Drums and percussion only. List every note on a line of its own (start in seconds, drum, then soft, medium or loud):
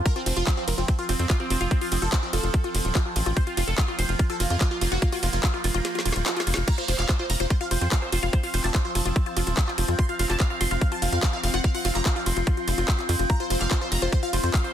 0.06 kick loud
0.06 closed hi-hat medium
0.06 ride medium
0.16 closed hi-hat soft
0.26 open hi-hat loud
0.26 ride medium
0.37 closed hi-hat medium
0.47 kick loud
0.47 clap loud
0.47 closed hi-hat medium
0.47 ride medium
0.68 open hi-hat loud
0.68 ride medium
0.78 closed hi-hat medium
0.88 kick loud
0.88 closed hi-hat medium
0.88 ride medium
0.99 closed hi-hat soft
1.09 open hi-hat loud
1.09 ride medium
1.19 closed hi-hat medium
1.30 kick loud
1.30 clap loud
1.30 closed hi-hat medium
1.30 ride medium
1.50 open hi-hat loud
1.50 ride medium
1.61 closed hi-hat medium
1.71 kick loud
1.71 closed hi-hat medium
1.71 ride medium
1.81 open hi-hat medium
1.92 open hi-hat loud
1.92 ride medium
2.02 closed hi-hat soft
2.12 kick loud
2.12 clap loud
2.12 closed hi-hat medium
2.12 ride medium
2.33 open hi-hat loud
2.33 ride medium
2.44 closed hi-hat medium
2.54 kick loud
2.54 closed hi-hat medium
2.54 ride medium
2.64 closed hi-hat soft
2.75 open hi-hat loud
2.75 ride medium
2.85 closed hi-hat medium
2.95 kick loud
2.95 clap loud
2.95 closed hi-hat medium
2.95 ride medium
3.16 open hi-hat loud
3.16 ride medium
3.26 closed hi-hat medium
3.37 kick loud
3.37 closed hi-hat medium
3.37 ride medium
3.47 closed hi-hat soft
3.57 open hi-hat loud
3.57 ride medium
3.68 closed hi-hat medium
3.78 kick loud
3.78 clap loud
3.78 closed hi-hat medium
3.78 ride medium
3.99 open hi-hat loud
3.99 ride medium
4.09 closed hi-hat medium
4.19 kick loud
4.19 closed hi-hat medium
4.19 ride medium
4.30 closed hi-hat soft
4.40 open hi-hat loud
4.40 ride medium
4.50 closed hi-hat medium
4.61 kick loud
4.61 clap loud
4.61 closed hi-hat medium
4.61 ride medium
4.81 open hi-hat loud
4.81 ride medium
4.92 closed hi-hat medium
5.02 kick loud
5.02 closed hi-hat medium
5.02 ride medium
5.12 open hi-hat medium
5.23 open hi-hat loud
5.23 ride medium
5.33 closed hi-hat medium
5.43 kick loud
5.43 clap loud
5.43 closed hi-hat medium
5.43 ride medium
5.64 open hi-hat loud
5.64 ride medium
5.75 closed hi-hat medium
5.85 snare medium
5.85 closed hi-hat medium
5.85 ride medium
5.95 snare medium
5.95 closed hi-hat soft
6.06 open hi-hat loud
6.06 ride medium
6.12 snare medium
6.12 closed hi-hat medium
6.26 snare medium
6.26 clap loud
6.26 closed hi-hat medium
6.26 ride medium
6.37 snare loud
6.37 closed hi-hat soft
6.47 open hi-hat loud
6.47 ride medium
6.54 snare loud
6.54 closed hi-hat medium
6.68 kick loud
6.68 closed hi-hat medium
6.68 ride medium
6.68 crash loud
6.78 closed hi-hat soft
6.88 open hi-hat loud
6.88 ride medium
6.99 clap soft
6.99 closed hi-hat medium
7.09 kick loud
7.09 clap loud
7.09 closed hi-hat medium
7.09 ride medium
7.30 open hi-hat loud
7.30 ride medium
7.40 closed hi-hat medium
7.50 kick loud
7.50 closed hi-hat medium
7.50 ride medium
7.61 closed hi-hat soft
7.71 open hi-hat loud
7.71 ride medium
7.81 closed hi-hat medium
7.92 kick loud
7.92 clap loud
7.92 closed hi-hat medium
7.92 ride medium
8.12 open hi-hat loud
8.12 ride medium
8.23 closed hi-hat medium
8.33 kick loud
8.33 closed hi-hat medium
8.33 ride medium
8.43 open hi-hat medium
8.54 open hi-hat loud
8.54 ride medium
8.64 clap soft
8.64 closed hi-hat medium
8.75 kick loud
8.75 clap loud
8.75 closed hi-hat medium
8.95 open hi-hat loud
8.95 ride medium
9.06 closed hi-hat medium
9.16 kick loud
9.16 closed hi-hat medium
9.16 ride medium
9.26 closed hi-hat soft
9.37 open hi-hat loud
9.37 ride medium
9.47 closed hi-hat medium
9.57 kick loud
9.57 clap loud
9.57 closed hi-hat medium
9.57 ride medium
9.68 clap soft
9.78 open hi-hat loud
9.78 ride medium
9.88 closed hi-hat medium
9.99 kick loud
9.99 closed hi-hat medium
9.99 ride medium
10.09 closed hi-hat soft
10.19 open hi-hat loud
10.19 ride medium
10.30 clap soft
10.30 closed hi-hat medium
10.40 kick loud
10.40 clap loud
10.40 closed hi-hat medium
10.40 ride medium
10.61 open hi-hat loud
10.61 ride medium
10.71 closed hi-hat medium
10.81 kick loud
10.81 closed hi-hat medium
10.81 ride medium
10.92 closed hi-hat soft
11.02 open hi-hat loud
11.02 ride medium
11.12 closed hi-hat medium
11.23 kick loud
11.23 clap loud
11.23 closed hi-hat medium
11.44 open hi-hat loud
11.44 ride medium
11.54 closed hi-hat medium
11.64 kick loud
11.64 closed hi-hat medium
11.64 ride medium
11.75 open hi-hat medium
11.85 open hi-hat loud
11.85 ride medium
11.95 clap soft
11.95 closed hi-hat medium
12.06 kick loud
12.06 clap loud
12.06 closed hi-hat medium
12.06 ride medium
12.26 open hi-hat loud
12.26 ride medium
12.37 closed hi-hat medium
12.47 kick loud
12.47 closed hi-hat medium
12.47 ride medium
12.57 closed hi-hat soft
12.68 open hi-hat loud
12.68 ride medium
12.78 closed hi-hat medium
12.88 kick loud
12.88 clap loud
12.88 closed hi-hat medium
12.88 ride medium
12.99 clap soft
12.99 closed hi-hat soft
13.09 open hi-hat loud
13.09 ride medium
13.19 closed hi-hat medium
13.30 kick loud
13.30 closed hi-hat medium
13.30 ride medium
13.40 closed hi-hat soft
13.50 open hi-hat loud
13.50 ride medium
13.61 clap soft
13.61 closed hi-hat medium
13.71 kick loud
13.71 clap loud
13.71 closed hi-hat medium
13.71 ride medium
13.92 open hi-hat loud
13.92 ride medium
14.02 closed hi-hat medium
14.12 kick loud
14.12 closed hi-hat medium
14.12 ride medium
14.23 closed hi-hat soft
14.33 open hi-hat loud
14.33 ride medium
14.44 closed hi-hat medium
14.54 kick loud
14.54 clap loud
14.54 closed hi-hat medium
14.54 ride medium